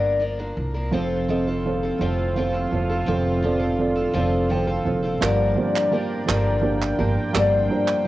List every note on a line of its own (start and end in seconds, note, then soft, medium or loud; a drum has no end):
0.00 0.50 G1 medium
0.00 0.21 G2 medium
0.00 0.21 D3 medium
0.00 0.18 F3 medium
0.00 0.19 A#3 medium
0.00 0.20 D4 medium
0.00 0.20 A#4 medium
0.20 0.39 F3 medium
0.20 0.39 A#3 medium
0.20 0.39 D4 medium
0.20 0.38 A#4 medium
0.39 0.75 F3 soft
0.39 0.75 A#3 medium
0.39 0.73 D4 medium
0.39 0.73 A#4 medium
0.57 0.89 C2 medium
0.74 0.91 F3 soft
0.74 0.93 A#3 soft
0.74 0.93 D4 soft
0.74 0.93 A#4 soft
0.91 1.88 F1 medium
0.91 3.04 F1 medium
0.91 3.04 F2 medium
0.91 5.17 A2 medium
0.91 5.17 C3 medium
0.91 1.19 F3 medium
0.91 5.17 F3 medium
0.91 1.27 F3 medium
0.91 1.20 C4 medium
0.91 3.05 C4 medium
0.91 1.28 C4 medium
0.91 5.17 F4 medium
0.91 1.29 F4 medium
0.91 1.20 A4 medium
0.91 1.29 A4 medium
0.91 1.20 C5 medium
1.28 1.47 F3 medium
1.28 1.56 F3 medium
1.28 1.47 C4 medium
1.28 1.56 C4 medium
1.28 1.47 F4 medium
1.28 1.56 A4 medium
1.28 1.46 A4 medium
1.28 1.56 D#5 medium
1.47 1.84 C4 soft
1.47 1.83 F4 soft
1.47 1.82 A4 medium
1.66 1.92 F3 medium
1.66 1.92 C4 medium
1.66 1.93 A4 medium
1.66 1.93 C5 medium
1.83 2.00 C4 soft
1.83 2.01 F4 soft
1.83 2.01 A4 medium
1.99 2.64 F1 medium
1.99 2.27 F3 medium
1.99 2.35 F3 medium
1.99 2.27 C4 medium
1.99 2.36 C4 medium
1.99 2.36 F4 medium
1.99 2.27 A4 medium
1.99 2.37 A4 medium
1.99 2.28 C5 medium
2.35 2.63 F3 medium
2.35 2.54 F3 medium
2.35 2.63 C4 medium
2.35 2.53 C4 medium
2.35 2.53 F4 medium
2.35 2.63 A4 medium
2.35 2.52 A4 medium
2.35 2.63 C5 medium
2.53 2.90 C4 soft
2.53 2.90 F4 medium
2.53 2.88 A4 medium
2.71 3.04 F1 medium
2.71 2.99 F3 medium
2.71 2.99 C4 medium
2.71 2.99 A4 medium
2.71 3.00 C5 medium
2.89 3.06 C4 soft
2.89 3.06 F4 soft
2.89 3.07 A4 soft
3.06 4.03 F1 medium
3.06 5.18 F1 medium
3.06 5.18 F2 medium
3.06 3.41 F3 medium
3.06 3.35 F3 medium
3.06 3.42 C4 medium
3.06 3.35 C4 medium
3.06 5.19 D4 medium
3.06 3.43 F4 medium
3.06 3.43 A4 medium
3.06 3.35 A4 medium
3.06 3.36 C5 medium
3.42 3.61 F3 medium
3.42 3.70 F3 medium
3.42 3.61 C4 medium
3.42 3.71 C4 medium
3.42 3.59 F4 medium
3.42 3.58 A4 medium
3.42 3.71 A4 medium
3.42 3.71 D5 medium
3.59 3.96 C4 soft
3.59 3.96 F4 medium
3.59 3.94 A4 medium
3.79 4.06 F3 medium
3.79 4.06 C4 medium
3.79 4.06 A4 medium
3.79 4.07 D5 medium
3.95 4.12 C4 soft
3.95 4.13 F4 medium
3.95 4.13 A4 medium
4.13 4.78 F1 medium
4.13 4.48 F3 medium
4.13 4.42 F3 medium
4.13 4.49 C4 medium
4.13 4.42 C4 medium
4.13 4.49 F4 medium
4.13 4.50 A4 medium
4.13 4.42 A4 medium
4.13 4.43 D5 medium
4.49 4.68 F3 medium
4.49 4.77 F3 medium
4.49 4.68 C4 medium
4.49 4.78 C4 medium
4.49 4.67 F4 medium
4.49 4.66 A4 medium
4.49 4.78 A4 medium
4.49 4.78 C5 medium
4.49 4.84 G5 medium
4.67 5.04 C4 soft
4.67 5.03 F4 medium
4.67 5.01 A4 medium
4.85 5.18 F1 medium
4.85 5.12 F3 medium
4.85 5.13 C4 medium
4.85 5.13 A4 medium
4.85 5.13 C5 medium
4.85 5.19 F5 medium
5.03 5.22 C4 soft
5.03 5.22 F4 medium
5.03 5.21 A4 medium
5.21 7.31 G1 medium
5.21 5.54 G1 medium
5.21 5.93 G2 medium
5.21 7.31 G2 medium
5.21 5.93 D3 medium
5.21 5.48 F3 medium
5.21 5.91 F3 medium
5.21 5.48 A#3 medium
5.21 5.91 A#3 medium
5.21 5.48 D4 medium
5.21 5.93 D4 medium
5.21 8.07 F4 medium
5.21 5.48 G4 medium
5.21 8.07 A#4 medium
5.21 5.49 A#4 medium
5.21 5.93 A#4 medium
5.21 7.33 D5 medium
5.21 8.07 G5 medium
5.21 clap medium
5.55 5.83 F3 medium
5.55 5.83 A#3 medium
5.55 5.84 D4 medium
5.55 5.84 G4 medium
5.55 5.84 C5 medium
5.76 clap medium
5.91 6.19 F3 medium
5.91 6.28 F3 medium
5.91 6.19 A#3 medium
5.91 6.27 A#3 medium
5.91 6.19 D4 medium
5.91 6.27 D4 medium
5.91 6.19 G4 medium
5.91 6.19 A#4 medium
5.91 6.26 A#4 medium
6.26 6.92 G1 loud
6.26 7.00 G2 medium
6.26 7.00 D3 medium
6.26 6.54 F3 medium
6.26 7.00 F3 medium
6.26 6.54 A#3 medium
6.26 6.99 A#3 medium
6.26 6.54 D4 medium
6.26 6.98 D4 medium
6.26 6.54 G4 medium
6.26 6.55 A#4 medium
6.26 6.97 A#4 medium
6.26 clap medium
6.61 6.89 F3 medium
6.61 6.89 A#3 medium
6.61 6.90 D4 medium
6.61 6.90 G4 medium
6.61 6.90 A#4 medium
6.82 clap medium
6.98 7.15 G1 loud
6.98 7.25 F3 medium
6.98 7.33 F3 soft
6.98 7.25 A#3 medium
6.98 7.34 A#3 soft
6.98 7.34 D4 medium
6.98 7.26 D4 medium
6.98 7.26 G4 medium
6.98 7.35 A#4 medium
6.98 7.26 A#4 medium
7.33 8.07 G1 medium
7.33 7.66 G1 medium
7.33 8.05 G2 medium
7.33 8.07 G2 medium
7.33 8.06 D3 medium
7.33 7.60 F3 medium
7.33 8.05 F3 medium
7.33 7.61 A#3 medium
7.33 8.05 A#3 medium
7.33 7.61 D4 medium
7.33 8.06 D4 medium
7.33 7.61 G4 medium
7.33 7.62 A#4 medium
7.33 8.06 A#4 medium
7.33 8.07 C5 medium
7.33 clap medium
7.69 7.97 F3 medium
7.69 7.96 A#3 medium
7.69 7.97 D4 medium
7.69 7.97 G4 medium
7.69 7.97 C5 medium
7.88 clap medium